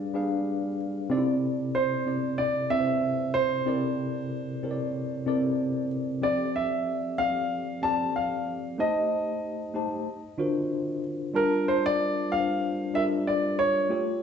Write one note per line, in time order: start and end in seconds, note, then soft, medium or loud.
0.00 0.14 G3 medium
0.00 0.14 D4 medium
0.00 0.15 G#4 medium
0.00 0.15 B4 medium
0.00 0.74 D5 medium
0.00 0.16 F5 loud
0.14 1.01 G3 medium
0.14 1.02 D4 medium
0.14 1.02 G#4 medium
0.14 1.02 B4 medium
0.14 1.02 F5 medium
1.09 1.97 C3 loud
1.09 1.97 C4 loud
1.09 1.18 D#4 medium
1.09 1.98 A4 medium
1.09 1.98 D5 loud
1.17 2.01 E4 loud
1.75 2.41 C5 medium
2.06 2.64 C3 medium
2.06 2.65 C4 medium
2.06 2.65 E4 medium
2.06 2.65 A4 medium
2.06 2.65 D5 medium
2.38 2.71 D5 medium
2.70 3.58 C3 medium
2.70 3.58 C4 medium
2.70 3.58 E4 medium
2.70 3.58 A4 medium
2.70 2.78 B4 medium
2.70 3.31 E5 loud
2.79 3.62 C5 medium
3.34 5.86 C5 loud
3.66 4.53 C3 medium
3.66 4.54 C4 medium
3.66 4.54 E4 medium
3.66 4.54 A4 medium
3.66 4.54 A#4 medium
3.66 4.54 D5 medium
4.63 5.21 C3 medium
4.63 5.21 C4 medium
4.63 5.21 E4 medium
4.63 5.21 A4 medium
4.63 5.22 A#4 medium
4.63 4.71 C#5 medium
4.71 5.25 D5 medium
5.26 6.13 C3 medium
5.26 6.14 C4 medium
5.26 6.14 E4 medium
5.26 6.14 A4 medium
5.26 6.14 A#4 medium
5.26 6.14 D5 loud
6.22 7.09 F3 medium
6.22 7.10 C4 medium
6.22 7.10 G4 medium
6.22 7.10 A4 medium
6.22 6.56 D5 medium
6.22 7.10 D5 loud
6.56 7.21 E5 medium
7.18 7.76 F3 medium
7.18 7.77 C4 medium
7.18 7.77 G4 medium
7.18 7.77 A4 medium
7.18 7.77 D5 medium
7.18 7.78 F5 medium
7.82 8.69 F3 medium
7.82 8.69 C4 medium
7.82 8.70 G4 medium
7.82 8.70 A4 medium
7.82 8.70 D5 medium
7.82 8.12 A5 medium
8.16 8.75 F5 medium
8.78 9.65 A3 medium
8.78 9.66 D#4 medium
8.78 9.66 G4 medium
8.78 9.66 C5 medium
8.78 10.99 D#5 medium
8.78 9.66 A5 loud
9.74 10.06 A3 medium
9.74 10.06 D#4 medium
9.74 10.07 G4 medium
9.74 10.07 C5 medium
9.74 10.07 A5 medium
10.38 11.25 D3 medium
10.38 11.25 D4 medium
10.38 11.26 F4 medium
10.38 11.26 F#4 medium
10.38 11.26 A#4 medium
10.38 11.26 C5 medium
11.34 12.21 G3 medium
11.34 12.21 D4 medium
11.34 12.22 F4 medium
11.34 12.22 A#4 loud
11.34 11.65 A#4 medium
11.34 12.22 A5 medium
11.68 11.83 C5 medium
11.86 12.33 D5 loud
12.30 12.88 G3 medium
12.30 12.88 D4 medium
12.30 12.88 F4 medium
12.30 12.89 A4 medium
12.30 12.38 B4 soft
12.30 12.97 F5 medium
12.38 12.92 C5 medium
12.94 13.81 G3 medium
12.94 13.81 D4 medium
12.94 13.82 F4 medium
12.94 13.82 A4 medium
12.94 13.82 A#4 medium
12.94 13.02 E5 medium
13.27 13.60 D5 medium
13.59 14.23 C#5 medium
13.89 14.23 A3 medium
13.89 14.23 F4 medium
13.89 14.23 G4 medium
13.89 14.23 A4 medium
13.89 14.23 C#5 loud